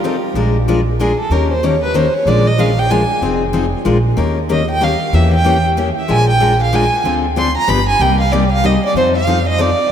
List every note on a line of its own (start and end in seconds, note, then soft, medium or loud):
0.00 0.15 F3 medium
0.00 0.36 F4 medium
0.04 0.15 C4 medium
0.04 0.15 D#4 medium
0.04 0.16 A4 medium
0.34 1.11 A#1 medium
0.34 0.56 F3 medium
0.34 0.56 G#3 medium
0.34 0.56 D4 medium
0.34 0.56 F4 medium
0.34 0.56 A#4 medium
0.68 0.79 F3 medium
0.68 0.79 G#3 medium
0.68 0.79 D4 medium
0.68 0.79 F4 medium
0.68 0.79 A#4 medium
0.99 1.11 F3 medium
0.99 1.11 G#3 medium
0.99 1.11 D4 medium
0.99 1.11 F4 medium
0.99 1.18 G#4 medium
0.99 1.11 A#4 medium
1.20 1.34 A4 medium
1.30 2.07 D#2 medium
1.30 1.51 D#3 medium
1.30 1.51 A#3 medium
1.30 1.52 C#4 medium
1.30 1.52 G4 medium
1.30 1.52 A#4 medium
1.30 1.50 A#4 medium
1.51 1.66 C5 medium
1.63 1.74 D#3 medium
1.63 1.74 A#3 medium
1.63 1.74 C#4 medium
1.63 1.75 G4 medium
1.63 1.75 A#4 medium
1.63 1.83 C#5 medium
1.83 1.97 B4 medium
1.94 2.06 D#3 medium
1.94 2.06 A#3 medium
1.94 2.06 C#4 medium
1.94 2.06 G4 medium
1.94 2.06 A#4 medium
1.94 2.16 C5 medium
2.14 2.29 C#5 medium
2.26 3.03 A#1 medium
2.26 2.47 F3 medium
2.26 2.47 G#3 medium
2.26 2.47 D4 medium
2.26 2.48 F4 medium
2.26 2.48 A#4 medium
2.26 2.48 D5 medium
2.47 2.61 D#5 medium
2.58 2.69 F3 medium
2.58 2.70 G#3 medium
2.58 2.70 D4 medium
2.58 2.70 F4 medium
2.58 2.70 A#4 medium
2.58 2.81 F5 medium
2.79 2.92 G5 loud
2.90 3.02 F3 medium
2.90 3.02 G#3 medium
2.90 3.02 D4 medium
2.90 3.02 F4 medium
2.90 3.02 A#4 medium
2.90 3.22 G#5 medium
3.21 3.73 F1 medium
3.21 3.42 F3 medium
3.21 3.43 C4 medium
3.21 3.43 D#4 medium
3.21 3.43 G#4 medium
3.53 3.65 F3 medium
3.53 3.65 C4 medium
3.53 3.65 D#4 medium
3.53 3.65 G#4 medium
3.85 4.11 A#1 medium
3.85 3.97 F3 medium
3.85 3.97 G#3 medium
3.85 3.97 D4 medium
3.85 3.97 F4 medium
3.85 3.97 A#4 medium
4.17 4.94 D#2 medium
4.17 4.38 D#3 medium
4.17 4.38 A#3 medium
4.17 4.38 C#4 medium
4.17 4.38 G4 medium
4.17 4.38 A#4 medium
4.49 4.60 D#3 medium
4.49 4.61 A#3 medium
4.49 4.61 C#4 medium
4.49 4.61 G4 medium
4.49 4.61 A#4 medium
4.49 4.69 D#5 medium
4.71 4.85 G5 loud
4.81 4.92 D#3 medium
4.81 4.92 A#3 medium
4.81 4.93 C#4 medium
4.81 4.93 G4 medium
4.81 4.93 A#4 medium
4.81 5.16 F5 medium
5.13 5.89 E2 medium
5.13 5.34 E3 medium
5.13 5.34 A#3 medium
5.13 5.34 C#4 medium
5.13 5.34 G4 medium
5.13 5.33 E5 medium
5.34 5.63 G5 loud
5.44 5.56 E3 medium
5.44 5.56 A#3 medium
5.44 5.56 C#4 medium
5.44 5.57 G4 medium
5.77 5.88 E3 medium
5.77 5.88 A#3 medium
5.77 5.88 C#4 medium
5.77 5.88 G4 medium
5.99 6.12 E5 medium
6.08 6.85 A#1 medium
6.08 6.29 F3 medium
6.08 6.29 G#3 medium
6.08 6.29 D4 medium
6.08 6.29 F4 medium
6.08 6.29 A#4 medium
6.08 6.29 G#5 loud
6.30 6.59 G5 loud
6.40 6.51 F3 medium
6.40 6.52 G#3 medium
6.40 6.52 D4 medium
6.40 6.52 F4 medium
6.40 6.52 A#4 medium
6.63 6.76 F5 medium
6.73 6.83 F3 medium
6.73 6.84 G#3 medium
6.73 6.84 D4 medium
6.73 6.84 F4 medium
6.73 6.84 A#4 medium
6.73 7.06 G#5 medium
7.04 7.55 D2 medium
7.04 7.25 D3 medium
7.04 7.25 F3 medium
7.04 7.25 C4 medium
7.04 7.25 D4 medium
7.04 7.25 A4 medium
7.36 7.47 D3 medium
7.36 7.47 F3 medium
7.36 7.48 C4 medium
7.36 7.48 D4 medium
7.36 7.48 A4 medium
7.36 7.55 C6 medium
7.57 7.70 A#5 loud
7.67 7.93 G1 medium
7.67 7.79 D3 medium
7.67 7.79 F3 medium
7.67 7.79 B3 medium
7.67 7.79 D4 medium
7.67 7.79 G4 loud
7.67 7.88 B5 loud
7.89 8.03 G#5 loud
7.99 8.76 C2 medium
7.99 8.20 C3 medium
7.99 8.20 G3 medium
7.99 8.20 A#3 medium
7.99 8.21 D#4 medium
7.99 8.21 G4 medium
7.99 8.20 G5 medium
8.20 8.34 F5 medium
8.32 8.43 C3 medium
8.32 8.43 G3 medium
8.32 8.43 A#3 medium
8.32 8.43 D#4 medium
8.32 8.43 G4 medium
8.32 8.51 D5 medium
8.52 8.67 F5 loud
8.64 8.74 C3 medium
8.64 8.74 G3 medium
8.64 8.75 A#3 medium
8.64 8.75 D#4 medium
8.64 8.75 G4 medium
8.64 8.84 D#5 medium
8.85 8.96 D5 medium
8.94 9.71 F2 medium
8.94 9.15 F3 medium
8.94 9.16 C4 medium
8.94 9.16 D#4 medium
8.94 9.16 A4 medium
8.94 9.08 C5 medium
9.17 9.45 F5 medium
9.27 9.38 F3 medium
9.27 9.38 C4 medium
9.27 9.38 D#4 medium
9.27 9.39 A4 medium
9.49 9.62 D#5 loud
9.58 9.69 F3 medium
9.58 9.70 C4 medium
9.58 9.70 D#4 medium
9.58 9.70 A4 medium
9.58 9.92 D5 medium